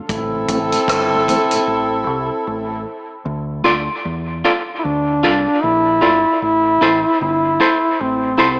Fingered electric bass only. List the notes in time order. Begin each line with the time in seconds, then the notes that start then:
0.10 A1
0.49 A1
0.89 G1
1.67 A1
2.07 C2
2.47 A1
3.25 D2
3.65 D2
4.05 E2
4.85 D2
5.24 C2
5.64 A#1
6.02 G1
6.42 A1
6.82 A1
7.21 G1
8.01 A1
8.40 C2